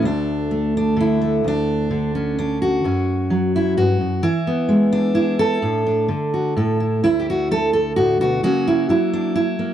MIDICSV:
0, 0, Header, 1, 2, 480
1, 0, Start_track
1, 0, Key_signature, 2, "major"
1, 0, Tempo, 465116
1, 39, Time_signature, 3, 2, 24, 8
1, 10049, End_track
2, 0, Start_track
2, 0, Title_t, "Steel-string acoustic guitar"
2, 0, Program_c, 0, 25
2, 0, Note_on_c, 0, 57, 53
2, 25, Note_on_c, 0, 38, 82
2, 55, Note_on_c, 0, 62, 92
2, 523, Note_off_c, 0, 57, 0
2, 527, Note_on_c, 0, 57, 53
2, 768, Note_off_c, 0, 62, 0
2, 795, Note_on_c, 0, 62, 80
2, 996, Note_on_c, 0, 50, 70
2, 1023, Note_off_c, 0, 62, 0
2, 1037, Note_on_c, 0, 64, 85
2, 1242, Note_off_c, 0, 57, 0
2, 1254, Note_on_c, 0, 57, 52
2, 1467, Note_off_c, 0, 57, 0
2, 1476, Note_off_c, 0, 38, 0
2, 1489, Note_on_c, 0, 38, 71
2, 1510, Note_off_c, 0, 64, 0
2, 1524, Note_on_c, 0, 62, 91
2, 1954, Note_off_c, 0, 50, 0
2, 1967, Note_on_c, 0, 50, 65
2, 2219, Note_on_c, 0, 61, 71
2, 2450, Note_off_c, 0, 62, 0
2, 2462, Note_on_c, 0, 62, 83
2, 2697, Note_off_c, 0, 62, 0
2, 2701, Note_on_c, 0, 66, 88
2, 2930, Note_off_c, 0, 38, 0
2, 2932, Note_off_c, 0, 50, 0
2, 2932, Note_off_c, 0, 61, 0
2, 2934, Note_on_c, 0, 42, 74
2, 2944, Note_on_c, 0, 61, 52
2, 3409, Note_on_c, 0, 54, 66
2, 3653, Note_off_c, 0, 66, 0
2, 3671, Note_on_c, 0, 64, 88
2, 3888, Note_off_c, 0, 42, 0
2, 3892, Note_off_c, 0, 64, 0
2, 3892, Note_on_c, 0, 43, 61
2, 3897, Note_on_c, 0, 66, 93
2, 4130, Note_off_c, 0, 43, 0
2, 4137, Note_on_c, 0, 42, 63
2, 4336, Note_off_c, 0, 54, 0
2, 4341, Note_off_c, 0, 61, 0
2, 4363, Note_on_c, 0, 52, 80
2, 4365, Note_on_c, 0, 64, 115
2, 4368, Note_off_c, 0, 66, 0
2, 4370, Note_off_c, 0, 42, 0
2, 4615, Note_on_c, 0, 59, 54
2, 4836, Note_on_c, 0, 56, 68
2, 5083, Note_on_c, 0, 62, 91
2, 5301, Note_off_c, 0, 64, 0
2, 5313, Note_on_c, 0, 64, 90
2, 5556, Note_off_c, 0, 62, 0
2, 5566, Note_on_c, 0, 69, 101
2, 5765, Note_off_c, 0, 56, 0
2, 5767, Note_off_c, 0, 52, 0
2, 5774, Note_off_c, 0, 59, 0
2, 5795, Note_off_c, 0, 64, 0
2, 5802, Note_on_c, 0, 45, 76
2, 5810, Note_on_c, 0, 62, 48
2, 6041, Note_off_c, 0, 62, 0
2, 6053, Note_on_c, 0, 62, 47
2, 6279, Note_on_c, 0, 50, 67
2, 6286, Note_off_c, 0, 45, 0
2, 6531, Note_off_c, 0, 69, 0
2, 6540, Note_on_c, 0, 66, 49
2, 6747, Note_off_c, 0, 62, 0
2, 6748, Note_off_c, 0, 66, 0
2, 6769, Note_off_c, 0, 50, 0
2, 6776, Note_on_c, 0, 45, 73
2, 6785, Note_on_c, 0, 69, 68
2, 7020, Note_on_c, 0, 64, 52
2, 7233, Note_off_c, 0, 64, 0
2, 7238, Note_off_c, 0, 69, 0
2, 7258, Note_on_c, 0, 38, 72
2, 7262, Note_off_c, 0, 45, 0
2, 7262, Note_on_c, 0, 64, 100
2, 7426, Note_on_c, 0, 67, 70
2, 7494, Note_off_c, 0, 67, 0
2, 7532, Note_on_c, 0, 66, 87
2, 7751, Note_on_c, 0, 50, 67
2, 7752, Note_off_c, 0, 66, 0
2, 7756, Note_on_c, 0, 69, 109
2, 7924, Note_off_c, 0, 64, 0
2, 7968, Note_off_c, 0, 69, 0
2, 7981, Note_on_c, 0, 69, 91
2, 8213, Note_off_c, 0, 69, 0
2, 8218, Note_on_c, 0, 66, 93
2, 8227, Note_on_c, 0, 45, 67
2, 8456, Note_off_c, 0, 66, 0
2, 8461, Note_off_c, 0, 45, 0
2, 8466, Note_on_c, 0, 47, 59
2, 8472, Note_on_c, 0, 66, 100
2, 8695, Note_off_c, 0, 38, 0
2, 8696, Note_off_c, 0, 66, 0
2, 8699, Note_off_c, 0, 47, 0
2, 8701, Note_off_c, 0, 50, 0
2, 8703, Note_on_c, 0, 49, 75
2, 8709, Note_on_c, 0, 66, 106
2, 8713, Note_on_c, 0, 54, 49
2, 8718, Note_on_c, 0, 58, 52
2, 8953, Note_on_c, 0, 64, 88
2, 9171, Note_off_c, 0, 54, 0
2, 9172, Note_off_c, 0, 64, 0
2, 9175, Note_off_c, 0, 49, 0
2, 9175, Note_on_c, 0, 54, 69
2, 9184, Note_on_c, 0, 64, 88
2, 9415, Note_off_c, 0, 66, 0
2, 9427, Note_on_c, 0, 62, 84
2, 9642, Note_off_c, 0, 64, 0
2, 9654, Note_off_c, 0, 62, 0
2, 9655, Note_on_c, 0, 64, 89
2, 9886, Note_off_c, 0, 58, 0
2, 9898, Note_on_c, 0, 58, 50
2, 10049, Note_off_c, 0, 54, 0
2, 10049, Note_off_c, 0, 58, 0
2, 10049, Note_off_c, 0, 64, 0
2, 10049, End_track
0, 0, End_of_file